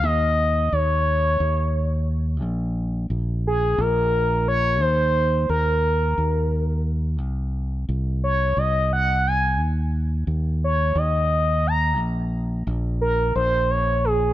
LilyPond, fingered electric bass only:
\new Staff \with { instrumentName = "Fingered electric bass" } { \clef bass \time 7/8 \key ees \dorian \tempo 4 = 88 ees,4 ees,4 ees,4. | bes,,4 bes,,4 bes,,4. | ees,4 ees,4 ees,4. | c,4 c,4 c,4. |
ees,4 ees,4 ees,4. | bes,,4 bes,,4 bes,,4. | }